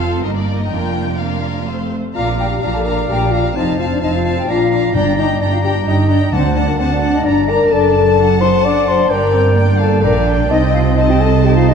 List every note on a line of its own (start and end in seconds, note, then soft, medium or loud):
0.00 0.20 F1 soft
0.00 0.20 F2 soft
0.00 0.23 C4 soft
0.00 0.23 F4 soft
0.00 0.23 A4 soft
0.00 0.23 F5 soft
0.23 0.70 G1 soft
0.23 0.71 G2 soft
0.23 0.71 A#3 soft
0.23 0.71 D#4 soft
0.23 0.70 A#4 soft
0.23 0.35 D#5 soft
0.36 0.59 D5 soft
0.59 0.71 D#5 soft
0.70 1.95 F1 soft
0.70 1.96 F2 soft
0.70 1.18 A#3 soft
0.70 1.18 D4 soft
0.70 1.18 F4 soft
0.70 1.18 A#4 soft
0.70 1.19 G5 medium
1.19 1.66 A#3 soft
1.19 1.66 D4 soft
1.19 1.66 F4 soft
1.19 1.66 A#4 soft
1.19 1.91 F5 soft
1.67 1.95 A3 soft
1.67 1.95 C4 soft
1.67 1.75 F4 soft
1.67 1.95 C5 soft
2.15 2.57 A#1 soft
2.15 2.57 A#2 soft
2.15 2.38 D4 soft
2.15 2.26 F4 medium
2.15 2.60 D5 soft
2.15 2.38 F5 soft
2.15 2.59 F5 soft
2.15 2.38 F5 medium
2.15 2.37 A#5 soft
2.38 2.62 D4 soft
2.38 2.63 G4 medium
2.38 2.61 F5 soft
2.38 2.45 G5 soft
2.38 2.61 A#5 soft
2.62 3.04 A#1 soft
2.62 3.04 A#2 soft
2.62 2.84 D4 soft
2.62 2.69 F4 medium
2.62 3.58 D5 soft
2.62 2.67 F5 soft
2.62 3.58 F5 soft
2.62 2.85 F5 soft
2.62 2.84 A#5 soft
2.73 2.86 A4 medium
2.73 2.79 A5 soft
2.85 3.08 D4 soft
2.85 3.09 A#4 medium
2.85 3.09 F5 soft
2.85 3.09 A#5 soft
2.85 2.92 A#5 soft
3.09 3.51 A#1 soft
3.09 3.51 A#2 soft
3.09 3.32 D4 soft
3.09 3.32 G4 medium
3.09 3.32 F5 soft
3.09 3.32 G5 soft
3.09 3.32 A#5 soft
3.31 3.56 D4 soft
3.31 3.55 F4 medium
3.31 3.39 F5 soft
3.31 3.56 F5 soft
3.31 3.56 A#5 soft
3.56 3.97 F1 soft
3.56 3.97 F2 soft
3.56 3.78 C4 soft
3.56 3.79 D#4 medium
3.56 4.02 C5 soft
3.56 3.79 D#5 medium
3.56 3.78 F5 soft
3.56 3.78 A5 soft
3.56 4.03 A5 soft
3.79 4.02 C4 soft
3.79 3.85 F4 soft
3.79 4.01 F5 soft
3.79 3.85 F5 soft
3.79 4.01 A5 soft
3.91 3.96 D4 soft
3.91 4.01 D5 soft
4.00 4.43 F1 soft
4.00 4.43 F2 soft
4.00 4.25 C4 soft
4.00 4.13 D#4 medium
4.00 4.51 C5 soft
4.00 4.14 D#5 soft
4.00 4.24 F5 soft
4.00 4.24 A5 soft
4.00 4.51 A5 soft
4.14 4.37 F4 medium
4.14 4.40 F5 soft
4.25 4.49 C4 soft
4.25 4.48 F5 soft
4.25 4.48 A5 soft
4.37 4.42 G4 soft
4.37 4.52 G5 soft
4.48 4.89 A#1 soft
4.48 4.89 A#2 soft
4.48 4.71 D4 soft
4.48 4.93 F4 medium
4.48 4.94 D5 soft
4.48 4.71 F5 soft
4.48 4.95 F5 soft
4.48 4.70 A#5 soft
4.48 4.94 A#5 soft
4.71 4.93 D4 soft
4.71 4.94 F5 soft
4.71 4.94 A#5 soft
4.94 5.35 G1 soft
4.94 5.35 G2 soft
4.94 5.59 G2 soft
4.94 5.17 D4 medium
4.94 5.17 D4 soft
4.94 5.40 D5 soft
4.94 5.21 D5 medium
4.94 5.17 G5 soft
4.94 5.40 A#5 soft
4.94 5.17 A#5 soft
5.17 5.39 D4 soft
5.17 5.27 D#4 medium
5.17 5.42 D#5 soft
5.17 5.40 G5 soft
5.17 5.40 A#5 soft
5.40 5.81 G1 soft
5.40 5.81 G2 soft
5.40 5.45 D4 medium
5.40 5.62 D4 soft
5.40 5.54 D5 soft
5.40 5.86 D5 soft
5.40 5.63 G5 soft
5.40 5.62 A#5 soft
5.40 6.35 A#5 soft
5.52 5.57 F4 medium
5.52 5.63 F5 soft
5.63 5.85 D4 soft
5.63 5.74 G4 medium
5.63 5.70 G5 soft
5.63 5.86 G5 soft
5.63 5.85 A#5 soft
5.86 6.27 G1 soft
5.86 6.27 G2 soft
5.86 6.09 D4 soft
5.86 6.09 D#4 medium
5.86 5.93 D#5 soft
5.86 6.35 D#5 soft
5.86 6.10 G5 soft
5.86 6.08 A#5 soft
6.09 6.31 D4 soft
6.09 6.33 D4 medium
6.09 6.16 D5 soft
6.09 6.33 G5 soft
6.09 6.32 A#5 soft
6.32 6.73 D2 medium
6.32 6.74 D2 soft
6.32 6.98 D3 medium
6.32 6.44 C4 medium
6.32 6.55 D4 soft
6.32 6.58 C5 medium
6.32 6.78 F#5 soft
6.32 6.56 F#5 soft
6.32 6.55 A5 soft
6.32 6.79 A5 soft
6.55 6.60 D4 medium
6.55 6.78 D4 soft
6.55 6.69 D5 soft
6.55 6.79 F#5 soft
6.55 6.79 A5 soft
6.67 6.79 A#3 medium
6.67 6.79 A#4 soft
6.78 7.19 D2 soft
6.78 7.20 D2 medium
6.78 6.91 C4 medium
6.78 7.01 D4 soft
6.78 6.84 C5 soft
6.78 7.25 F#5 soft
6.78 7.01 F#5 soft
6.78 7.24 A5 soft
6.78 7.02 A5 soft
6.92 7.15 D4 medium
6.92 7.13 D5 soft
7.02 7.23 D4 soft
7.02 7.25 F#5 soft
7.02 7.25 A5 soft
7.14 7.26 D#4 medium
7.14 7.26 D#5 medium
7.24 7.66 G1 soft
7.24 7.66 G2 soft
7.24 7.47 D4 soft
7.24 7.49 D4 medium
7.24 7.71 D5 soft
7.24 7.50 D5 medium
7.24 7.48 D5 soft
7.24 7.73 A#5 soft
7.24 7.47 A#5 soft
7.48 7.70 D4 soft
7.48 7.72 A#4 medium
7.48 7.71 D5 soft
7.48 7.71 A#5 soft
7.48 7.70 A#5 medium
7.71 9.07 F#1 medium
7.71 9.06 F#2 soft
7.71 8.15 D4 soft
7.71 8.41 A4 medium
7.71 8.35 D5 soft
7.71 8.15 D5 soft
7.71 8.42 A5 medium
7.71 8.37 A5 soft
7.71 9.07 A5 medium
8.18 8.26 D4 medium
8.18 9.11 F#5 soft
8.40 8.48 D#4 medium
8.40 8.63 C5 medium
8.40 8.66 C6 medium
8.64 9.09 D4 soft
8.64 9.07 D5 medium
8.64 8.88 D5 medium
8.64 9.11 A5 soft
8.64 8.89 D6 medium
8.88 9.11 C5 medium
8.88 9.10 C6 medium
9.10 10.02 G1 medium
9.10 10.01 G2 medium
9.10 9.33 D4 medium
9.10 9.81 A#4 medium
9.10 10.01 D5 medium
9.10 9.56 D5 soft
9.10 10.03 G5 soft
9.10 9.55 G5 medium
9.10 9.57 A#5 medium
9.33 9.56 C4 soft
9.56 10.03 A#3 medium
9.56 10.49 D5 medium
9.56 9.80 G5 medium
9.79 10.04 A4 medium
9.79 10.01 F5 soft
9.79 10.02 A5 medium
10.02 10.50 A#1 medium
10.02 10.50 A#2 medium
10.02 10.50 D4 medium
10.02 10.14 A#4 medium
10.02 10.50 D5 medium
10.02 10.26 F5 medium
10.02 10.49 G5 soft
10.02 10.26 A#5 medium
10.26 10.97 G5 medium
10.50 11.74 C2 medium
10.50 11.74 C3 medium
10.50 11.45 C4 medium
10.50 10.61 D#4 medium
10.50 10.56 D#5 medium
10.50 10.94 D#5 soft
10.50 10.96 D#5 soft
10.50 10.94 A5 medium
10.73 10.97 F4 medium
10.73 10.79 F5 medium
10.97 11.09 D#4 medium
10.97 11.02 D#5 medium
10.97 11.44 D#5 medium
10.97 11.44 D#5 soft
10.97 11.74 A5 medium
10.97 11.74 A5 soft
11.08 11.21 G4 medium
11.08 11.22 G5 medium
11.20 11.45 A4 medium
11.20 11.44 A5 soft
11.44 11.74 D#4 soft
11.44 11.57 G4 medium
11.44 11.74 C5 soft
11.44 11.74 D#5 soft
11.44 11.55 G5 medium
11.55 11.69 F4 medium
11.55 11.70 F5 medium
11.68 11.74 D#4 medium
11.68 11.74 D#5 medium